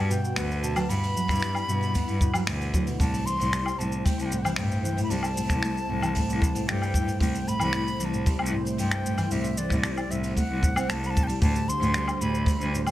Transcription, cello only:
0.36 0.72 D2 medium
0.89 1.00 G2 medium
1.28 1.64 G2 medium
1.68 2.03 G2 medium
2.08 2.18 G2 medium
2.47 2.82 D2 medium
3.00 3.10 C2 medium
3.39 3.74 C2 loud
3.79 4.14 C2 medium
4.18 4.29 C2 medium
4.58 4.93 G2 medium
5.10 5.21 C2 medium
5.49 5.85 C2 medium
5.89 6.24 C2 medium
6.29 6.39 C2 medium
6.68 7.03 G2 medium
7.20 7.31 C2 medium
7.60 7.95 C2 loud
8.00 8.35 C2 medium
8.39 8.50 C2 loud
8.79 9.14 G2 medium
9.31 9.42 C2 loud
9.70 10.06 C2 loud
10.10 10.45 C2 medium
10.50 10.60 C2 loud
10.89 11.24 C2 medium
11.42 11.52 D2 loud
11.81 12.16 D2 loud
12.20 12.56 D2 medium
12.60 12.70 D2 loud

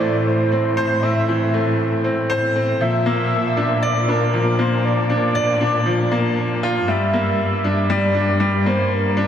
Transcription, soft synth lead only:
0.00 0.28 D5 loud
0.27 0.76 C5 medium
0.76 1.04 C5 medium
1.02 1.53 E5 loud
2.80 3.85 E5 loud
3.83 4.10 D5 loud
4.09 4.60 A#4 loud
4.59 4.84 C5 medium
4.85 6.58 D5 loud
6.88 7.92 E5 loud
7.91 8.69 D5 loud
8.67 8.94 C5 medium
8.93 9.27 A#4 loud

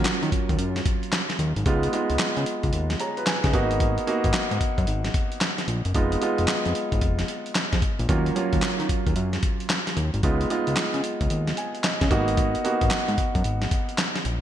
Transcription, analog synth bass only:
0.05 0.12 D#3 soft
0.23 0.31 D#3 medium
0.49 0.57 D#2 loud
0.59 0.81 F#2 loud
1.39 1.54 D#2 medium
1.56 1.64 G#1 loud
1.66 1.88 C#2 loud
2.10 2.18 C#2 medium
2.20 2.27 C#3 soft
2.37 2.45 C#3 medium
2.64 2.72 C#2 medium
2.73 2.96 D#2 medium
3.44 3.52 C#3 medium
3.53 3.99 G#1 loud
4.24 4.32 G#1 loud
4.34 4.41 G#2 medium
4.51 4.59 G#2 loud
4.78 4.86 F#2 medium
4.88 5.10 G#1 medium
5.68 5.82 A#1 medium
5.85 5.93 F#1 medium
5.95 6.17 F1 loud
6.39 6.47 F1 medium
6.49 6.55 F2 medium
6.66 6.74 F2 medium
6.92 7.00 G#1 medium
7.02 7.24 F1 medium
7.73 7.81 F2 medium
7.99 8.07 A#1 medium
8.09 8.31 D#2 loud
8.53 8.61 D#2 medium
8.63 8.69 D#3 soft
8.80 8.88 D#3 medium
9.06 9.15 D#2 medium
9.16 9.39 F#2 loud
9.97 10.11 D#2 loud
10.14 10.22 G#1 medium
10.23 10.46 C#2 loud
10.67 10.75 C#2 medium
10.77 10.84 C#3 soft
10.94 11.02 C#3 medium
11.21 11.29 C#2 medium
11.31 11.53 D#2 medium
12.01 12.09 C#3 medium
12.11 12.56 G#1 loud
12.81 12.89 G#1 medium
12.92 12.98 G#2 medium
13.09 13.16 G#2 loud
13.35 13.43 F#2 loud
13.45 13.67 G#1 medium
14.25 14.39 A#1 medium

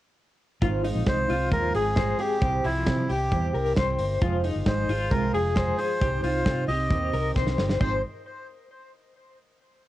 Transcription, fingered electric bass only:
0.62 0.91 G#1 medium
0.95 1.05 A#1 medium
1.07 1.26 C2 medium
1.30 1.49 C2 medium
1.52 1.71 D#2 medium
1.75 2.13 G#1 medium
2.42 2.61 C2 medium
2.64 2.84 C2 medium
2.86 3.06 C3 medium
3.09 3.28 C2 medium
3.31 3.51 E2 medium
3.54 3.73 C2 medium
3.77 3.96 C2 medium
3.99 4.18 G1 medium
4.22 4.50 F1 medium
4.55 4.65 G1 medium
4.66 4.85 G#1 medium
4.89 5.08 G#1 medium
5.11 5.30 C2 medium
5.34 5.72 F1 medium
6.01 6.20 C2 medium
6.23 6.42 C2 medium
6.46 6.65 C3 medium
6.68 6.87 C2 medium
6.91 7.10 D#2 medium
7.13 7.32 C2 medium
7.36 7.55 C2 medium
7.58 7.77 G1 medium
7.81 8.02 G#1 medium

